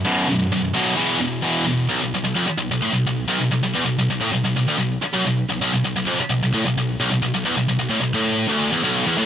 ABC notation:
X:1
M:4/4
L:1/16
Q:1/4=129
K:Edor
V:1 name="Distorted electric guitar" clef=bass
[B,,,F,,B,,]2 [B,,,F,,]2 [B,,,F,,]2 [B,,,F,,B,,]2 [E,,B,,E,]2 [E,,B,,]2 [E,,B,,E,]2 [E,,B,,]2 | B,,, B,,, B,,, B,,, ^E,, z B,,, B,,, A,, B,,, B,,,2 B,,, B,,, B,,, B,,, | E,, B,,, B,,, B,,, A,, B,,, B,,, B,,, D,, B,,,2 z F,, B,,,2 B,,, | B,,, B,,, B,,, B,,, ^E,, z B,,, B,,, A,, B,,, B,,,2 B,,, B,,, B,,, B,,, |
E,, B,,, B,,, B,,, A,, B,,, A,,3 D,,2 E,, B,,,2 E,, A,, |]